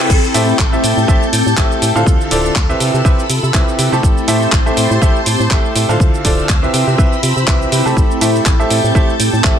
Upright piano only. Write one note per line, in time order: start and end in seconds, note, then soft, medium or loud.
0.34 0.57 A3 medium
0.34 0.57 E4 medium
0.34 0.57 G4 medium
0.34 0.57 A4 medium
0.34 0.57 C5 medium
0.34 0.57 E5 medium
0.73 1.06 A3 medium
0.73 1.06 E4 medium
0.73 1.06 G4 medium
0.73 1.06 A4 medium
0.73 1.06 C5 medium
0.73 1.06 E5 medium
1.08 1.23 A3 loud
1.08 1.23 E4 medium
1.08 1.23 G4 medium
1.08 1.23 A4 medium
1.08 1.23 C5 medium
1.08 1.23 E5 loud
1.57 1.92 A3 medium
1.57 1.92 E4 medium
1.57 1.92 G4 medium
1.57 1.92 A4 medium
1.57 1.92 C5 medium
1.57 1.92 E5 medium
1.96 2.29 D3 medium
1.96 2.29 E4 medium
1.96 2.29 F4 medium
1.96 2.29 A4 medium
1.96 2.29 C5 medium
1.96 2.29 F5 loud
2.31 2.54 D3 medium
2.31 2.54 E4 medium
2.31 2.54 F4 medium
2.31 2.54 A4 medium
2.31 2.54 C5 medium
2.31 2.54 D5 medium
2.69 3.02 C3 medium
2.69 3.02 E4 medium
2.69 3.02 G4 medium
2.69 3.02 B4 medium
2.69 3.02 C5 medium
2.69 3.02 E5 medium
3.05 3.20 C3 loud
3.05 3.20 E4 medium
3.05 3.20 G4 medium
3.05 3.20 B4 medium
3.05 3.20 C5 medium
3.05 3.20 E5 loud
3.54 3.89 C3 medium
3.54 3.89 E4 medium
3.54 3.89 G4 medium
3.54 3.89 B4 medium
3.54 3.89 C5 medium
3.54 3.89 E5 medium
3.92 4.25 A3 medium
3.92 4.25 E4 medium
3.92 4.25 G4 medium
3.92 4.25 A4 medium
3.92 4.25 C5 medium
3.92 4.25 A5 medium
4.28 4.51 A3 medium
4.28 4.51 E4 medium
4.28 4.51 G4 medium
4.28 4.51 A4 medium
4.28 4.51 C5 medium
4.28 4.51 E5 medium
4.66 4.99 A3 medium
4.66 4.99 E4 medium
4.66 4.99 G4 medium
4.66 4.99 A4 medium
4.66 4.99 C5 medium
4.66 4.99 E5 medium
5.02 5.17 A3 loud
5.02 5.17 E4 medium
5.02 5.17 G4 medium
5.02 5.17 A4 loud
5.02 5.17 C5 medium
5.02 5.17 E5 loud
5.51 5.86 A3 medium
5.51 5.86 E4 medium
5.51 5.86 G4 medium
5.51 5.86 A4 medium
5.51 5.86 C5 medium
5.51 5.86 E5 medium
5.89 6.22 D3 medium
5.89 6.22 E4 medium
5.89 6.22 F4 medium
5.89 6.22 A4 medium
5.89 6.22 C5 medium
5.89 6.22 F5 medium
6.25 6.47 D3 medium
6.25 6.47 E4 medium
6.25 6.47 F4 medium
6.25 6.47 A4 medium
6.25 6.47 C5 medium
6.25 6.47 D5 medium
6.63 6.96 C3 medium
6.63 6.96 E4 medium
6.63 6.96 G4 medium
6.63 6.96 B4 medium
6.63 6.96 C5 medium
6.63 6.96 E5 medium
6.98 7.14 C3 loud
6.98 7.14 E4 medium
6.98 7.14 G4 medium
6.98 7.14 B4 medium
6.98 7.14 C5 medium
6.98 7.14 E5 loud
7.48 7.82 C3 medium
7.48 7.82 E4 medium
7.48 7.82 G4 medium
7.48 7.82 B4 medium
7.48 7.82 C5 medium
7.48 7.82 E5 medium
7.86 8.19 A3 medium
7.86 8.19 E4 medium
7.86 8.19 G4 medium
7.86 8.19 A4 medium
7.86 8.19 C5 medium
7.86 8.19 A5 medium
8.21 8.44 A3 medium
8.21 8.44 E4 medium
8.21 8.44 G4 medium
8.21 8.44 A4 medium
8.21 8.44 C5 medium
8.21 8.44 E5 medium
8.60 8.92 A3 medium
8.60 8.92 E4 medium
8.60 8.92 G4 medium
8.60 8.92 A4 medium
8.60 8.92 C5 medium
8.60 8.92 E5 medium
8.95 9.10 A3 loud
8.95 9.10 E4 medium
8.95 9.10 G4 medium
8.95 9.10 A4 medium
8.95 9.10 C5 medium
8.95 9.10 E5 loud
9.44 9.59 A3 medium
9.44 9.59 E4 medium
9.44 9.59 G4 medium
9.44 9.59 A4 medium
9.44 9.59 C5 medium
9.44 9.59 E5 medium